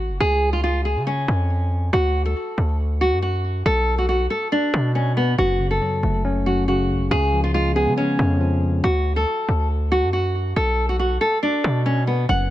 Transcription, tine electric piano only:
0, 0, Header, 1, 2, 480
1, 0, Start_track
1, 0, Tempo, 431655
1, 227, Time_signature, 4, 2, 24, 8
1, 13903, End_track
2, 0, Start_track
2, 0, Title_t, "Tine electric piano"
2, 0, Program_c, 0, 4
2, 5987, Note_on_c, 0, 42, 87
2, 6218, Control_c, 0, 64, 127
2, 6227, Note_on_c, 0, 49, 75
2, 6467, Note_on_c, 0, 54, 80
2, 6706, Note_on_c, 0, 57, 81
2, 6948, Note_on_c, 0, 61, 97
2, 7174, Note_off_c, 0, 42, 0
2, 7187, Note_on_c, 0, 42, 83
2, 7414, Note_off_c, 0, 49, 0
2, 7427, Note_on_c, 0, 49, 95
2, 7667, Note_off_c, 0, 54, 0
2, 7895, Note_off_c, 0, 49, 0
2, 7907, Note_off_c, 0, 42, 0
2, 7907, Note_off_c, 0, 57, 0
2, 7908, Note_off_c, 0, 61, 0
2, 7908, Note_on_c, 0, 49, 92
2, 7920, Control_c, 0, 64, 0
2, 8149, Note_on_c, 0, 53, 74
2, 8150, Control_c, 0, 64, 127
2, 8388, Note_on_c, 0, 56, 85
2, 8627, Note_on_c, 0, 59, 95
2, 8867, Note_on_c, 0, 61, 97
2, 9093, Note_off_c, 0, 49, 0
2, 9106, Note_on_c, 0, 49, 83
2, 9335, Note_off_c, 0, 53, 0
2, 9348, Note_on_c, 0, 53, 80
2, 9588, Note_off_c, 0, 56, 0
2, 9827, Note_off_c, 0, 49, 0
2, 9827, Note_off_c, 0, 59, 0
2, 9827, Note_off_c, 0, 61, 0
2, 9828, Note_off_c, 0, 53, 0
2, 9839, Control_c, 0, 64, 0
2, 13667, Note_on_c, 0, 42, 89
2, 13862, Control_c, 0, 64, 127
2, 13903, Note_off_c, 0, 42, 0
2, 13903, End_track
0, 0, End_of_file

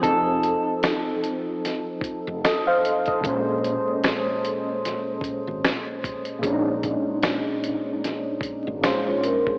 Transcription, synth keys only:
0, 0, Header, 1, 2, 480
1, 0, Start_track
1, 0, Tempo, 800000
1, 20, Time_signature, 4, 2, 24, 8
1, 5750, End_track
2, 0, Start_track
2, 0, Title_t, "Synth keys"
2, 0, Program_c, 0, 88
2, 0, Control_c, 0, 64, 127
2, 0, Note_on_c, 0, 53, 64
2, 9, Note_on_c, 0, 60, 59
2, 28, Control_c, 0, 64, 0
2, 28, Note_on_c, 0, 63, 61
2, 42, Note_on_c, 0, 69, 70
2, 136, Control_c, 0, 64, 127
2, 1447, Note_off_c, 0, 69, 0
2, 1465, Note_on_c, 0, 75, 57
2, 1468, Note_on_c, 0, 69, 50
2, 1591, Note_off_c, 0, 75, 0
2, 1592, Note_off_c, 0, 69, 0
2, 1602, Note_on_c, 0, 77, 68
2, 1605, Note_on_c, 0, 72, 55
2, 1826, Note_off_c, 0, 77, 0
2, 1828, Note_off_c, 0, 72, 0
2, 1845, Note_on_c, 0, 75, 62
2, 1849, Note_on_c, 0, 69, 49
2, 1903, Note_off_c, 0, 53, 0
2, 1910, Note_off_c, 0, 60, 0
2, 1920, Note_off_c, 0, 63, 0
2, 1923, Note_on_c, 0, 46, 80
2, 1939, Note_on_c, 0, 56, 66
2, 1948, Control_c, 0, 64, 0
2, 1955, Note_on_c, 0, 61, 66
2, 1971, Note_on_c, 0, 72, 84
2, 2059, Control_c, 0, 64, 127
2, 2068, Note_off_c, 0, 75, 0
2, 2070, Note_off_c, 0, 69, 0
2, 3827, Note_off_c, 0, 46, 0
2, 3835, Note_off_c, 0, 56, 0
2, 3835, Note_on_c, 0, 46, 78
2, 3843, Note_off_c, 0, 61, 0
2, 3851, Note_off_c, 0, 72, 0
2, 3852, Note_on_c, 0, 56, 64
2, 3867, Note_on_c, 0, 61, 64
2, 3882, Note_on_c, 0, 62, 64
2, 3915, Note_off_c, 0, 62, 0
2, 3920, Note_on_c, 0, 63, 76
2, 5263, Note_off_c, 0, 46, 0
2, 5272, Note_off_c, 0, 56, 0
2, 5279, Note_off_c, 0, 61, 0
2, 5286, Note_on_c, 0, 46, 50
2, 5294, Note_on_c, 0, 56, 49
2, 5302, Note_on_c, 0, 61, 49
2, 5306, Note_off_c, 0, 63, 0
2, 5310, Note_on_c, 0, 72, 61
2, 5750, Note_off_c, 0, 46, 0
2, 5750, Note_off_c, 0, 56, 0
2, 5750, Note_off_c, 0, 61, 0
2, 5750, Note_off_c, 0, 72, 0
2, 5750, End_track
0, 0, End_of_file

